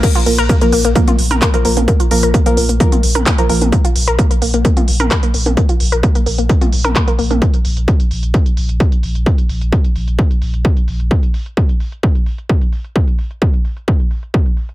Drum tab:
CC |x---------------|----------------|----------------|----------------|
HH |xxoxxxoxxxoxxxox|xxoxxxoxxxoxxxox|xxoxxxoxxxoxxxox|xxoxxxoxxxoxxxox|
CP |------------x---|------------x---|------------x---|------------x---|
T2 |---------o-o---o|---------o-o---o|---------o-o---o|---------o-o---o|
BD |o---o---o---o---|o---o---o---o---|o---o---o---o---|o---o---o---o---|

CC |----------------|----------------|----------------|----------------|
HH |xxoxxxoxxxoxxxox|xxoxxxoxxxoxxxox|xxoxxxox-xox-xox|-xox-xox-xox-xox|
CP |----------------|----------------|----------------|----------------|
T2 |----------------|----------------|----------------|----------------|
BD |o---o---o---o---|o---o---o---o---|o---o---o---o---|o---o---o---o---|